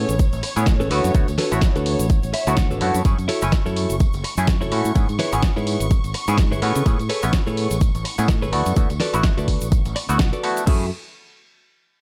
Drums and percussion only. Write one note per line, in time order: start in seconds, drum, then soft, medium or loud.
0.09 closed hi-hat medium
0.09 tambourine soft
0.09 shaker medium
0.19 kick loud
0.19 closed hi-hat medium
0.19 tambourine soft
0.19 shaker medium
0.33 closed hi-hat soft
0.33 tambourine soft
0.33 shaker soft
0.43 open hi-hat loud
0.43 tambourine medium
0.43 high woodblock medium
0.56 closed hi-hat medium
0.56 tambourine soft
0.56 shaker medium
0.66 kick loud
0.66 snare loud
0.66 closed hi-hat medium
0.66 tambourine soft
0.66 shaker medium
0.80 tambourine soft
0.80 shaker soft
0.91 open hi-hat loud
0.91 tambourine medium
0.91 high woodblock medium
1.04 closed hi-hat soft
1.04 tambourine soft
1.04 shaker medium
1.15 kick loud
1.15 closed hi-hat medium
1.15 tambourine soft
1.15 shaker medium
1.28 closed hi-hat soft
1.28 tambourine soft
1.28 shaker soft
1.38 snare medium
1.38 open hi-hat loud
1.38 tambourine medium
1.52 closed hi-hat soft
1.52 tambourine soft
1.52 high woodblock medium
1.52 shaker medium
1.61 kick loud
1.61 snare loud
1.61 closed hi-hat medium
1.61 tambourine soft
1.61 shaker medium
1.76 closed hi-hat soft
1.76 tambourine soft
1.76 shaker soft
1.86 open hi-hat loud
1.86 tambourine medium
1.99 closed hi-hat medium
1.99 tambourine soft
1.99 shaker medium
2.10 kick loud
2.10 closed hi-hat medium
2.10 tambourine soft
2.10 shaker medium
2.23 closed hi-hat soft
2.23 tambourine soft
2.23 shaker soft
2.34 open hi-hat loud
2.34 tambourine medium
2.34 high woodblock medium
2.47 closed hi-hat soft
2.47 tambourine soft
2.47 shaker medium
2.57 kick loud
2.57 snare loud
2.57 closed hi-hat medium
2.57 tambourine soft
2.57 shaker medium
2.71 tambourine soft
2.71 shaker soft
2.81 open hi-hat loud
2.81 tambourine medium
2.81 high woodblock medium
2.94 closed hi-hat medium
2.94 tambourine soft
2.94 shaker medium
3.05 kick loud
3.05 closed hi-hat medium
3.05 tambourine soft
3.05 shaker medium
3.18 closed hi-hat soft
3.18 tambourine soft
3.18 shaker soft
3.29 open hi-hat loud
3.29 tambourine medium
3.42 closed hi-hat medium
3.42 tambourine soft
3.42 high woodblock medium
3.42 shaker medium
3.52 kick loud
3.52 snare loud
3.52 closed hi-hat medium
3.52 tambourine soft
3.52 shaker medium
3.66 tambourine soft
3.66 shaker soft
3.76 open hi-hat medium
3.76 tambourine medium
3.90 closed hi-hat medium
3.90 tambourine soft
3.90 shaker medium
4.00 kick loud
4.00 closed hi-hat medium
4.00 tambourine soft
4.00 shaker medium
4.13 closed hi-hat soft
4.13 tambourine soft
4.13 shaker soft
4.24 open hi-hat loud
4.24 tambourine medium
4.24 high woodblock medium
4.38 closed hi-hat medium
4.38 tambourine soft
4.38 shaker medium
4.47 kick loud
4.47 snare loud
4.47 closed hi-hat medium
4.47 tambourine soft
4.47 shaker medium
4.61 tambourine soft
4.61 shaker soft
4.72 open hi-hat medium
4.72 tambourine medium
4.72 high woodblock medium
4.85 closed hi-hat soft
4.85 tambourine soft
4.85 shaker medium
4.96 kick loud
4.96 closed hi-hat medium
4.96 tambourine soft
4.96 shaker medium
5.09 closed hi-hat soft
5.09 tambourine soft
5.09 shaker soft
5.19 snare medium
5.19 open hi-hat loud
5.19 tambourine medium
5.33 closed hi-hat medium
5.33 tambourine soft
5.33 high woodblock medium
5.33 shaker medium
5.43 kick loud
5.43 snare loud
5.43 closed hi-hat medium
5.43 tambourine soft
5.43 shaker medium
5.56 tambourine soft
5.56 shaker soft
5.67 open hi-hat medium
5.67 tambourine medium
5.80 closed hi-hat medium
5.80 tambourine soft
5.80 shaker medium
5.91 kick loud
5.91 closed hi-hat medium
5.91 tambourine soft
5.91 shaker medium
6.04 closed hi-hat soft
6.04 tambourine soft
6.04 shaker soft
6.14 open hi-hat loud
6.14 tambourine medium
6.14 high woodblock medium
6.28 closed hi-hat medium
6.28 tambourine soft
6.28 shaker medium
6.38 kick loud
6.38 snare loud
6.38 closed hi-hat medium
6.38 tambourine soft
6.38 shaker medium
6.52 tambourine soft
6.52 shaker soft
6.62 open hi-hat medium
6.62 tambourine medium
6.62 high woodblock medium
6.75 closed hi-hat medium
6.75 tambourine soft
6.75 shaker medium
6.86 kick loud
6.86 closed hi-hat medium
6.86 tambourine soft
6.86 shaker medium
6.99 closed hi-hat soft
6.99 tambourine soft
6.99 shaker soft
7.10 open hi-hat loud
7.10 tambourine medium
7.23 closed hi-hat medium
7.23 tambourine soft
7.23 high woodblock medium
7.23 shaker medium
7.33 kick loud
7.33 snare loud
7.33 closed hi-hat medium
7.33 tambourine medium
7.33 shaker medium
7.47 tambourine soft
7.47 shaker soft
7.57 open hi-hat medium
7.57 tambourine medium
7.71 closed hi-hat medium
7.71 tambourine soft
7.71 shaker medium
7.81 kick loud
7.81 closed hi-hat medium
7.81 tambourine soft
7.81 shaker medium
7.95 closed hi-hat soft
7.95 tambourine soft
7.95 shaker soft
8.05 open hi-hat loud
8.05 tambourine medium
8.05 high woodblock medium
8.18 closed hi-hat medium
8.18 tambourine soft
8.18 shaker medium
8.28 kick loud
8.28 snare loud
8.28 closed hi-hat medium
8.28 tambourine soft
8.28 shaker medium
8.42 tambourine soft
8.42 shaker soft
8.53 open hi-hat medium
8.53 tambourine medium
8.53 high woodblock medium
8.66 closed hi-hat medium
8.66 tambourine soft
8.66 shaker medium
8.76 kick loud
8.76 closed hi-hat medium
8.76 tambourine soft
8.76 shaker medium
8.90 closed hi-hat soft
8.90 tambourine soft
8.90 shaker soft
9.00 snare medium
9.00 open hi-hat loud
9.00 tambourine medium
9.14 closed hi-hat medium
9.14 tambourine soft
9.14 high woodblock medium
9.14 shaker medium
9.23 kick loud
9.23 snare loud
9.23 closed hi-hat medium
9.23 tambourine soft
9.23 shaker medium
9.38 closed hi-hat soft
9.38 tambourine soft
9.38 shaker soft
9.48 kick medium
9.48 open hi-hat medium
9.48 tambourine medium
9.61 closed hi-hat medium
9.61 tambourine soft
9.61 shaker medium
9.72 kick loud
9.72 closed hi-hat medium
9.72 tambourine soft
9.72 shaker medium
9.85 closed hi-hat soft
9.85 tambourine soft
9.85 shaker soft
9.96 open hi-hat loud
9.96 tambourine medium
9.96 high woodblock medium
10.09 closed hi-hat medium
10.09 tambourine soft
10.09 shaker medium
10.19 kick loud
10.19 snare loud
10.19 closed hi-hat medium
10.19 tambourine soft
10.19 shaker medium
10.33 closed hi-hat soft
10.33 tambourine soft
10.33 shaker soft
10.44 open hi-hat medium
10.44 tambourine medium
10.44 high woodblock medium
10.57 closed hi-hat medium
10.57 tambourine soft
10.57 shaker medium
10.67 kick loud
10.67 crash medium